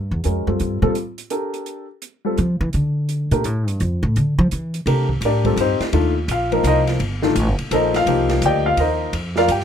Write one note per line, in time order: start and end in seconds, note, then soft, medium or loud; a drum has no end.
0.00 0.11 G2 medium
0.11 0.24 E2 medium
0.24 0.47 F2 medium
0.24 0.45 G#3 soft
0.24 0.45 C#4 soft
0.24 0.45 F#4 soft
0.24 0.45 A#4 soft
0.24 closed hi-hat soft
0.47 0.59 F#2 medium
0.47 0.78 G3 soft
0.47 0.78 C4 soft
0.47 0.78 F4 soft
0.47 0.78 A4 soft
0.60 0.81 G2 medium
0.60 closed hi-hat soft
0.82 0.90 A#2 medium
0.82 0.94 G3 medium
0.82 0.94 C4 medium
0.82 0.94 F4 medium
0.82 0.94 A4 medium
0.95 closed hi-hat soft
1.18 closed hi-hat soft
1.30 1.85 D4 medium
1.30 1.85 G4 medium
1.30 1.84 A4 medium
1.30 1.85 A#4 medium
1.30 closed hi-hat soft
1.54 closed hi-hat soft
1.66 closed hi-hat soft
2.02 closed hi-hat medium
2.25 2.36 G3 medium
2.25 2.37 C4 soft
2.25 2.36 F4 soft
2.25 2.37 A4 medium
2.38 2.60 F3 medium
2.38 closed hi-hat soft
2.61 2.73 E3 loud
2.73 3.28 D3 medium
2.73 closed hi-hat soft
3.09 closed hi-hat medium
3.31 3.45 A#2 medium
3.31 3.43 A3 medium
3.31 3.43 D4 medium
3.31 3.43 G4 medium
3.31 3.43 A#4 medium
3.31 closed hi-hat soft
3.44 3.68 A2 medium
3.44 closed hi-hat medium
3.68 3.80 G2 medium
3.68 closed hi-hat soft
3.80 4.02 F2 medium
3.80 closed hi-hat soft
4.03 4.15 A2 medium
4.16 4.38 D3 medium
4.16 closed hi-hat soft
4.39 4.51 F3 loud
4.51 4.79 E3 medium
4.51 closed hi-hat medium
4.74 closed hi-hat soft
4.86 5.20 C3 medium
4.86 5.07 A3 medium
4.86 5.07 D4 medium
4.86 5.07 G4 medium
4.86 5.08 A#4 medium
4.86 ride medium
5.09 kick medium
5.21 5.56 A2 medium
5.21 hi-hat pedal medium
5.21 ride medium
5.25 5.57 D4 medium
5.25 5.57 G4 medium
5.25 5.57 A#4 medium
5.25 5.57 D5 medium
5.45 5.56 G3 medium
5.45 5.56 C4 medium
5.45 5.56 F4 medium
5.45 5.57 A4 medium
5.45 kick medium
5.45 ride soft
5.56 5.78 G2 medium
5.56 hi-hat pedal medium
5.56 ride medium
5.61 5.81 C4 medium
5.61 5.82 D#4 medium
5.61 5.81 G4 medium
5.61 5.81 C5 medium
5.80 muted upright bass stroke soft
5.80 snare medium
5.80 ride soft
5.93 6.27 D#2 medium
5.93 6.14 D#3 medium
5.93 6.14 A3 medium
5.93 6.14 D4 medium
5.93 6.14 F4 medium
5.93 ride medium
6.28 6.63 A#1 medium
6.28 6.63 F4 medium
6.28 6.63 F5 medium
6.28 hi-hat pedal medium
6.28 ride medium
6.52 6.97 F3 medium
6.52 6.97 A#3 medium
6.52 6.66 D#4 medium
6.52 6.66 A#4 medium
6.52 ride soft
6.63 6.98 C2 medium
6.63 6.80 A#4 medium
6.63 6.80 C5 medium
6.63 6.80 D#5 medium
6.63 hi-hat pedal medium
6.63 ride medium
6.68 6.80 D#4 medium
6.87 snare soft
6.87 ride soft
6.99 7.34 G1 medium
6.99 ride medium
7.22 7.34 D#3 medium
7.22 7.34 A3 medium
7.22 7.34 D4 medium
7.22 7.34 F4 medium
7.22 snare medium
7.35 7.48 A1 loud
7.35 hi-hat pedal medium
7.35 ride medium
7.48 7.59 G1 medium
7.59 7.70 D#1 medium
7.59 ride soft
7.71 8.06 A#1 medium
7.71 8.05 F3 medium
7.71 8.06 A#3 medium
7.71 8.06 D#4 medium
7.71 8.26 A4 medium
7.71 7.95 C5 medium
7.71 7.95 D#5 medium
7.71 hi-hat pedal medium
7.71 ride medium
7.75 7.95 A#4 medium
7.94 8.40 F4 medium
7.94 8.40 F5 medium
7.94 snare soft
7.94 ride soft
8.06 8.41 C2 medium
8.06 9.06 F3 medium
8.06 9.06 A#3 medium
8.06 8.79 D#4 medium
8.06 8.44 G4 medium
8.06 ride medium
8.29 snare medium
8.29 ride soft
8.42 8.76 D2 medium
8.42 8.66 G4 medium
8.42 8.66 D5 medium
8.42 8.66 D#5 medium
8.42 8.66 G5 medium
8.42 hi-hat pedal medium
8.42 ride medium
8.66 8.78 F4 medium
8.66 8.78 F5 medium
8.77 9.12 D#2 medium
8.77 9.12 D#4 medium
8.77 9.12 A#4 medium
8.77 9.12 C5 medium
8.77 9.12 D#5 medium
8.77 ride medium
9.13 9.48 F2 medium
9.13 ride medium
9.36 9.49 F4 medium
9.36 9.49 A#4 medium
9.36 9.49 D5 medium
9.36 9.49 F5 loud
9.36 snare medium
9.48 9.64 G2 medium
9.48 9.64 G4 medium
9.48 9.64 G5 medium
9.48 hi-hat pedal medium
9.48 ride medium
9.60 snare soft